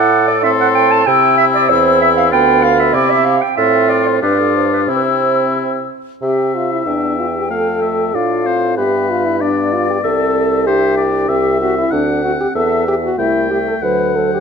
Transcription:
0.00 1.07 A2 medium
0.00 0.45 E4 medium
0.00 0.42 A4 medium
0.00 0.27 F#5 medium
0.00 0.45 D6 medium
0.28 0.43 D5 medium
0.43 1.07 C4 medium
0.43 1.06 A4 medium
0.43 0.51 E5 medium
0.43 1.06 C6 medium
0.61 0.68 F#5 medium
0.75 0.93 G5 medium
0.91 1.08 A5 medium
1.06 1.72 C3 medium
1.06 1.66 C4 medium
1.06 1.66 E4 medium
1.06 1.37 G5 loud
1.06 2.30 E6 medium
1.38 1.45 E5 loud
1.55 1.71 D5 medium
1.69 2.34 E2 medium
1.69 2.31 C4 medium
1.69 2.33 E4 medium
1.69 2.01 C5 medium
2.02 2.09 E5 medium
2.18 2.25 F5 medium
2.32 2.96 D2 medium
2.32 2.97 B3 medium
2.32 2.95 F4 medium
2.32 2.64 G5 loud
2.32 2.96 B5 medium
2.63 2.81 F5 loud
2.79 2.95 E5 medium
2.94 3.41 C3 medium
2.94 3.42 C4 medium
2.94 3.40 E4 medium
2.94 3.12 D5 medium
2.94 3.35 D6 medium
3.10 3.26 E5 medium
3.25 3.43 F5 medium
3.42 3.57 G5 medium
3.56 4.18 A2 medium
3.56 4.19 C4 medium
3.56 4.18 F4 medium
3.56 3.91 E5 medium
3.56 4.17 C6 medium
3.89 4.09 D5 medium
4.07 4.22 C5 medium
4.22 4.90 G2 medium
4.22 4.90 D4 medium
4.22 4.91 F4 medium
4.22 4.38 B4 medium
4.22 4.90 D6 medium
4.40 4.55 A4 medium
4.56 4.72 C5 medium
4.73 4.81 B4 medium
4.88 5.89 C3 medium
4.88 5.90 C4 medium
4.88 5.90 E4 medium
4.88 4.98 C5 medium
4.88 5.90 E6 medium
4.96 5.05 B4 medium
5.04 5.56 C5 medium
6.21 6.82 C3 soft
6.21 6.82 C4 soft
6.21 6.56 G4 medium
6.21 6.89 E5 soft
6.21 7.47 E5 medium
6.55 6.73 F4 medium
6.72 6.88 E4 medium
6.86 7.52 E2 soft
6.86 7.52 B3 soft
6.86 7.19 D4 medium
6.86 8.17 G5 soft
7.19 7.26 F4 medium
7.36 7.49 G4 soft
7.50 8.14 F2 soft
7.50 7.82 A3 soft
7.50 8.16 A4 medium
7.50 7.81 F5 medium
7.82 8.15 A3 medium
7.82 8.16 E5 medium
8.14 8.80 A2 soft
8.14 8.47 D4 soft
8.14 8.77 F4 medium
8.14 8.48 D5 soft
8.14 8.78 F5 soft
8.46 8.80 C4 soft
8.46 8.77 C5 soft
8.77 10.04 G2 medium
8.77 9.41 B3 soft
8.77 9.11 G4 medium
8.77 9.43 B4 medium
8.77 9.45 E5 soft
9.10 9.28 F4 medium
9.26 9.43 E4 medium
9.41 10.03 B3 soft
9.41 9.75 D4 medium
9.41 10.03 D5 medium
9.41 10.68 D5 medium
9.73 9.89 F4 medium
9.90 9.97 G4 medium
10.03 11.27 C2 medium
10.03 10.65 C4 medium
10.03 10.68 A4 medium
10.03 10.65 E5 medium
10.67 11.29 D4 soft
10.67 11.28 G4 medium
10.67 10.97 C5 medium
10.67 11.02 E5 medium
10.97 11.30 D5 medium
11.28 11.85 C2 medium
11.28 11.61 C4 medium
11.28 11.60 G4 medium
11.28 11.93 E5 medium
11.28 11.61 E5 medium
11.61 11.92 C4 soft
11.61 11.77 F#4 medium
11.61 11.93 E5 soft
11.78 11.94 E4 medium
11.91 12.38 D2 medium
11.91 12.23 C4 soft
11.91 12.24 D4 medium
11.91 12.55 F#5 medium
11.91 12.25 F#5 medium
12.24 12.55 C4 soft
12.24 12.32 F#4 medium
12.24 12.56 F#5 soft
12.40 12.47 G4 medium
12.55 13.11 E2 medium
12.55 12.87 B3 medium
12.55 12.87 A4 medium
12.55 12.96 E5 medium
12.55 12.88 E5 soft
12.88 13.17 B3 soft
12.88 12.95 G4 medium
12.88 13.19 E5 medium
13.04 13.20 F#4 medium
13.18 13.75 C2 medium
13.18 13.49 A3 soft
13.18 13.50 E4 medium
13.18 13.51 E5 soft
13.18 13.84 G5 medium
13.51 13.82 A3 soft
13.51 13.58 G4 medium
13.51 13.84 E5 soft
13.68 13.75 A4 medium
13.82 14.40 D2 medium
13.82 14.15 F#3 soft
13.82 14.17 B4 medium
13.82 14.16 C5 soft
13.82 14.40 F#5 medium
14.16 14.40 F#3 soft
14.16 14.32 A4 medium
14.16 14.40 C5 soft
14.34 14.40 G4 medium

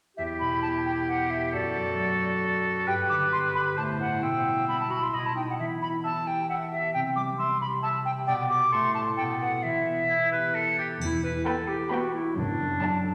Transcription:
0.17 1.55 E2 soft
0.17 1.55 E4 soft
0.17 1.49 G4 soft
0.17 0.23 E5 medium
0.39 1.55 B2 soft
0.39 0.61 B5 soft
0.62 1.55 B3 soft
0.62 0.68 A5 soft
0.85 0.91 G5 soft
1.08 1.55 B4 soft
1.08 1.32 F#5 soft
1.30 1.55 G4 soft
1.30 1.52 E5 soft
1.53 2.89 F#2 soft
1.53 2.89 F#4 soft
1.53 2.88 A4 soft
1.53 2.63 D5 soft
1.75 2.89 F#3 soft
1.98 2.89 A3 soft
2.21 2.64 A4 soft
2.43 3.79 D5 soft
2.65 2.89 A4 soft
2.87 3.79 G2 soft
2.87 3.77 G4 medium
2.87 3.78 B4 soft
2.87 2.93 G5 medium
3.09 3.79 D3 soft
3.09 3.15 D6 medium
3.32 3.79 B3 soft
3.32 3.38 C6 medium
3.55 3.79 G4 soft
3.55 3.61 B5 medium
3.77 4.24 A2 soft
3.77 4.24 A3 soft
3.77 4.22 C5 soft
3.77 3.83 A5 medium
4.00 4.89 E4 soft
4.00 4.24 C5 soft
4.00 4.24 F#5 soft
4.22 5.12 B2 soft
4.22 4.63 B3 soft
4.22 5.15 E5 soft
4.22 4.67 G5 soft
4.45 5.15 G3 soft
4.68 4.78 B3 soft
4.68 6.03 B3 soft
4.68 4.79 B5 medium
4.80 4.92 A5 soft
4.89 5.15 E4 soft
4.89 5.00 F#4 soft
4.89 5.05 B5 soft
5.03 5.16 C6 soft
5.13 5.61 B2 soft
5.13 5.35 E4 soft
5.13 5.36 D#5 soft
5.13 5.28 B5 soft
5.26 5.36 A5 soft
5.36 5.46 D#4 soft
5.36 5.60 F#4 soft
5.36 5.61 D#5 soft
5.36 5.41 G5 soft
5.50 5.54 F#5 soft
5.59 6.95 E3 soft
5.59 5.96 E4 soft
5.59 5.65 E5 medium
5.81 8.29 E4 soft
5.81 5.88 B5 soft
6.04 6.95 B3 soft
6.04 6.20 E5 soft
6.04 6.29 A5 medium
6.27 6.71 G4 soft
6.27 6.49 G5 soft
6.49 7.82 E5 soft
6.49 6.66 E5 soft
6.49 6.55 F#5 medium
6.71 7.59 G4 soft
6.71 6.93 E5 soft
6.94 8.30 C3 soft
6.94 7.31 C4 soft
6.94 7.00 G5 medium
7.16 8.74 G3 soft
7.16 7.22 D6 medium
7.38 8.30 C4 soft
7.38 7.55 E5 soft
7.38 7.60 C6 soft
7.61 8.04 G4 soft
7.61 7.67 B5 medium
7.83 7.99 E5 soft
7.83 8.29 E5 soft
7.83 7.89 A5 medium
8.05 8.49 G4 soft
8.05 8.11 G5 medium
8.27 8.74 B2 soft
8.27 8.64 B3 medium
8.27 8.44 D5 soft
8.27 8.33 G5 medium
8.49 8.74 G4 soft
8.49 8.74 D5 soft
8.49 8.73 D6 medium
8.72 9.20 A2 soft
8.72 9.10 A3 medium
8.72 8.88 A4 soft
8.72 8.94 C6 medium
8.94 9.39 A4 soft
8.94 9.20 C5 soft
8.94 9.00 A5 medium
9.17 9.65 B2 soft
9.17 9.56 B3 soft
9.17 9.33 A4 soft
9.17 9.23 G5 medium
9.39 9.65 A4 soft
9.39 10.55 B4 soft
9.39 9.64 F#5 medium
9.63 11.00 E3 soft
9.63 10.02 E4 soft
9.63 10.78 E5 medium
9.86 11.45 B3 soft
10.10 10.31 E4 soft
10.10 11.23 E4 soft
10.32 10.78 G4 soft
10.32 10.56 B4 soft
10.54 10.78 A4 soft
10.54 11.91 B4 soft
10.78 10.89 G4 soft
10.78 11.68 G4 soft
11.01 11.37 E1 soft
11.01 11.37 E2 soft
11.01 12.39 E3 soft
11.01 11.22 E4 medium
11.01 triangle soft
11.24 12.39 E4 soft
11.24 11.47 B4 medium
11.46 11.80 B3 soft
11.46 12.39 B3 soft
11.46 11.70 A4 medium
11.46 11.80 G5 soft
11.46 11.80 B5 soft
11.68 11.93 G4 medium
11.68 12.14 G4 soft
11.91 12.25 B3 soft
11.91 12.13 F#4 medium
11.91 12.39 B4 soft
11.91 12.25 G5 soft
11.91 12.25 B5 soft
12.14 12.36 E4 medium
12.14 12.39 G4 soft
12.36 12.72 F#1 medium
12.36 12.72 F#2 medium
12.36 13.14 F#2 soft
12.36 13.14 D4 medium
12.60 13.14 F#3 soft
12.82 13.14 A3 soft
12.82 13.14 D4 medium
12.82 13.14 A5 medium
12.82 13.14 A5 soft
13.05 13.14 A4 soft

